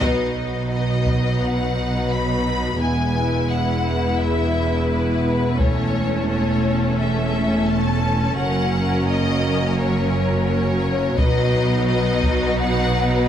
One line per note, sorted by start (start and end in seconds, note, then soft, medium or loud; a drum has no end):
0.00 2.77 B1 medium
0.00 2.77 B2 medium
0.00 2.77 F#3 soft
0.00 5.56 B3 soft
0.00 5.56 B3 medium
0.00 2.76 D#4 medium
0.00 2.77 F#4 medium
0.00 5.56 B4 soft
0.00 0.67 D#5 medium
0.00 taiko soft
0.71 1.40 D#5 medium
1.06 taiko soft
1.43 2.12 F#5 medium
2.10 2.81 B5 medium
2.81 8.35 E1 soft
2.81 8.35 E2 soft
2.81 5.56 G#3 soft
2.81 5.56 E4 soft
2.81 8.22 E4 soft
2.81 3.50 G#5 medium
3.50 4.20 F#5 medium
4.19 4.90 E5 medium
4.90 5.59 B4 medium
5.58 8.35 A3 soft
5.58 8.22 A3 soft
5.58 11.13 C#4 soft
5.58 11.14 C#4 soft
5.58 8.35 A4 soft
5.58 6.28 C#5 medium
5.58 taiko soft
6.29 6.98 C#5 medium
6.99 7.68 E5 medium
7.69 8.39 A5 medium
8.37 11.14 F#1 medium
8.37 11.14 F#2 soft
8.37 13.28 F#3 soft
8.37 11.14 A#3 medium
8.37 13.28 F#4 soft
8.37 11.14 A#4 medium
8.37 9.06 F#5 medium
9.07 9.76 D#5 medium
9.80 10.47 C#5 medium
10.48 11.17 C#5 medium
11.17 13.28 B1 medium
11.17 13.28 B2 medium
11.17 13.28 B3 medium
11.17 13.28 D#4 medium
11.17 13.28 B4 medium
11.17 11.86 D#5 medium
11.17 taiko soft
11.87 12.56 D#5 medium
12.22 taiko soft
12.59 13.27 F#5 medium